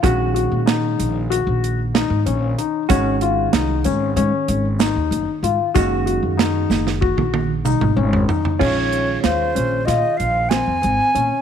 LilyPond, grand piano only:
\new Staff \with { instrumentName = "Grand piano" } { \time 9/8 \key ees \dorian \tempo 4. = 63 ges'8 ges'8 ees'4 ges'4 ees'8 des'8 ees'8 | des'8 f'8 ees'8 des'8 des'4 ees'4 f'8 | ges'8 ges'8 ees'4 ges'4 ees'8 des'8 ees'8 | des'4 f'8 des'8 f'4 c'8 c'8 des'8 | }